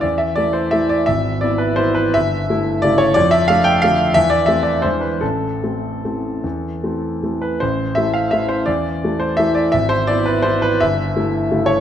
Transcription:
X:1
M:3/4
L:1/8
Q:1/4=171
K:Am
V:1 name="Grand piano"
d e d c e d | e2 d B c B | e4 d ^c | d e f g f2 |
e d e d c B | A6- | A4 z B | c2 e f e c |
d3 c e d | e c d B c B | e4 z ^c |]
V:2 name="Grand piano"
E,,2 [E,A,E]2 [E,A,E]2 | ^G,,,2 [B,E]2 [E,B,E]2 | G,,,2 [A,E]2 [^C,A,E]2 | F,,2 [A,D]2 [D,A,D]2 |
E,,2 [A,C]2 [E,,E,^G,D]2 | A,,,2 [A,C]2 [E,A,C]2 | E,,2 [E,A,C]2 [E,A,C]2 | A,,,2 [A,E]2 [E,A,E]2 |
E,,2 [E,A,E]2 [E,A,E]2 | ^G,,,2 [B,E]2 [E,B,E]2 | G,,,2 [A,E]2 [^C,A,E]2 |]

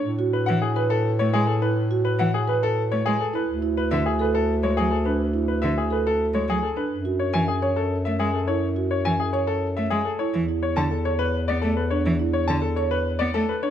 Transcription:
X:1
M:3/4
L:1/16
Q:1/4=105
K:F#m
V:1 name="Grand piano"
z2 B f G B A z c G A B | z2 B f G B A z c G A B | z2 B e G B A z c G A B | z2 B e G B A z c G A B |
z2 c g G c A z e G A c | z2 c g G c A z e G A c | z2 c a A c B z d A B c | z2 c a A c B z d A B c |]
V:2 name="Marimba"
z F z3 B z4 z E | z F z3 B z4 z E | z E z3 A z4 z D | z E z3 A z4 z D |
z F z3 c z4 z E | z F z3 c z4 z E | z E z3 c z4 z D | z E z3 c z4 z D |]
V:3 name="Cello" clef=bass
z3 E, z4 A, G, z2 | z3 E, z4 A, G, z2 | z3 D, z4 G, F, z2 | z3 D, z4 G, F, z2 |
z3 E, z4 A, G, z2 | z3 E, z4 A, G, z2 | E, z2 D, z4 B, A, z2 | E, z2 D, z4 B, A, z2 |]
V:4 name="Bass clarinet" clef=bass
A,,12- | A,,12 | D,,12- | D,,12 |
F,,12- | F,,12 | E,,12- | E,,12 |]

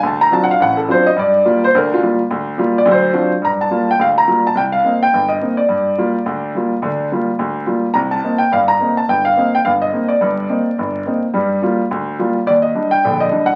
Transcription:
X:1
M:4/4
L:1/8
Q:"Swing" 1/4=212
K:Gm
V:1 name="Grand piano"
a b (3a ^f ^e f A c _e | d3 c B F z2 | z3 d c3 z | b a2 g f b2 a |
g f2 g2 e2 d- | d6- d z | z8 | b a2 g f b2 a |
g f2 g f e2 d- | d6- d z | z8 | d e2 g2 e2 ^f |]
V:2 name="Grand piano"
D,,2 [^F,CD^E] z A,,,2 [F,CDE] z | G,,2 [G,B,F] z [D,,D,]2 [G,B,F] z | D,,2 [G,B,F] z [D,,^F,]2 [F,CD^E] z | G,,2 [G,B,F] z D,,2 [G,B,F] z |
C,,2 [B,CE] z G,,,2 [B,CE] z | G,,2 [G,B,F] z D,,2 [G,B,F] z | [D,,D,]2 [G,B,F] z D,,2 [G,B,F] z | [C,,C,]2 [B,CE] z [G,,,G,,]2 [B,CE] z |
G,,,2 [B,CE] z G,,,2 [B,CE] z | [G,,,G,,]2 [B,CE] z G,,,2 [B,CE] z | [G,,G,]2 [G,B,F] z D,,2 [G,B,F] z | E,,2 [G,DE] z [B,,,D,]2 [G,DE] z |]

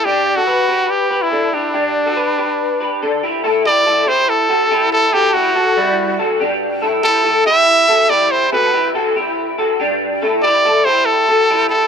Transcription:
X:1
M:4/4
L:1/16
Q:1/4=142
K:G
V:1 name="Trumpet"
G3 F4- F G3 E3 D2- | D12- D2 z2 | z2 d4 c2 A6 A2 | G2 F8 z6 |
z2 A4 e6 d2 c2 | B4 z12 | z2 d4 c2 A6 A2 |]
V:2 name="Clean electric guitar"
[DG]3 [FA] [GB]2 [GB]4 [GB]2 [DA]2 [EG]2 | [DG]3 [FA] [GB]2 [GB]4 [GB]2 [DA]2 [EG]2 | [EA]2 [EG]2 [EA]2 [EG]4 [FA]2 [EG]4 | [FA]2 [EG]2 [FA]2 [G,E]4 [FA]2 [DG]4 |
[EA]2 [EG]2 [EA]2 [EG]4 [FA]2 [EG]4 | [FA]2 [EG]2 [FA]2 [EG]4 [FA]2 [DG]4 | [EA]2 [EG]2 [EA]2 [EG]4 [FA]2 [EG]4 |]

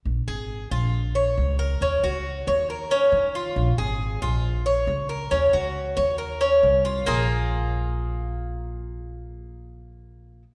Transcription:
X:1
M:4/4
L:1/8
Q:1/4=137
K:Bbm
V:1 name="Cuban tres"
z A2 F2 d2 B | D G2 d B D2 F- | F A2 F2 d2 B | D G2 d B D2 F |
[B,FA]8- | [B,FA]8 |]
V:2 name="Upright bass" clef=bass
B,,, A,,,2 B,,,3 D,,2 | E,, D,,2 E,,3 E,2 | B,,, A,,,2 B,,,3 D,,2 | E,, D,,2 E,,3 C,,2 |
B,,,8- | B,,,8 |]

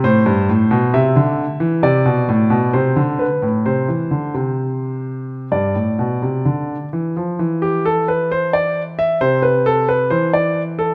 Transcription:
X:1
M:4/4
L:1/16
Q:1/4=66
K:Ddor
V:1 name="Grand piano"
c4 e4 d4 c2 B2 | c8 d6 z2 | z G A B c d2 e c B A B c d2 A |]
V:2 name="Grand piano" clef=bass
A,, G,, A,, B,, C, D,2 E, C, B,, A,, B,, C, D,2 A,, | C, E, D, C,4- C, G,, A,, B,, C, D,2 E, F, | E,8 C,4 E,4 |]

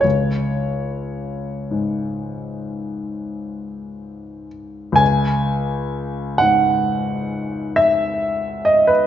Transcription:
X:1
M:9/8
L:1/16
Q:3/8=41
K:C#m
V:1 name="Grand piano"
c16 z2 | g6 f6 e4 d B |]
V:2 name="Grand piano" clef=bass
C,,6 G,,12 | C,,6 G,,12 |]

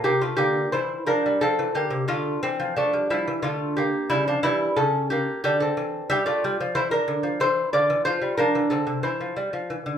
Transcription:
X:1
M:3/4
L:1/16
Q:1/4=90
K:Dm
V:1 name="Lute"
[B,G] [A,F] [B,G]2 [Ec]2 [DB]2 [CA]2 [B,G]2 | [A,F]2 [E,C]2 [F,D]2 [G,E]2 [A,F]2 [B,G]2 | [G,E] [F,D] [G,E]2 [^CA]2 [^A,G]2 [DG] [=C=A]3 | [K:F] [Ge] [Fd]3 [Ec] [DB]3 [Ec]2 [Fd]2 |
[Fc]2 [DB]2 [CA]2 [Ec]2 z4 |]
V:2 name="Lute" clef=bass
C,2 D,2 E,2 F, G, F, E, D, C, | D,2 z F, A, G, F, E, D,4 | ^C,2 E,2 C,4 D,2 E,2 | [K:F] G, A, G, F, E,2 D, F, E,2 D, E, |
F, G, F, E, D, C, E, F, G, F, E, D, |]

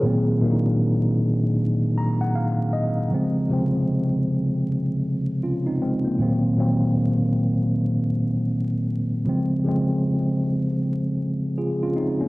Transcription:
X:1
M:4/4
L:1/16
Q:"Swing 16ths" 1/4=78
K:Bbm
V:1 name="Tine electric piano"
[FA] z8 z b g f2 e2 | z12 [DF] [CE] [A,C] B,- | B, z12 z3 | z12 [FA] [DF] [CE] [B,D] |]
V:2 name="Tine electric piano" clef=bass
[B,,E,G,B,C]2 [B,,E,G,B,=DE]6 z8 | [D,F,A,C]2 [C,D,F,A,C]6 z8 | [B,,E,G,B,C]2 [B,,E,G,B,C]6 z8 | [D,F,A,C]2 [D,F,A,C]6 z8 |]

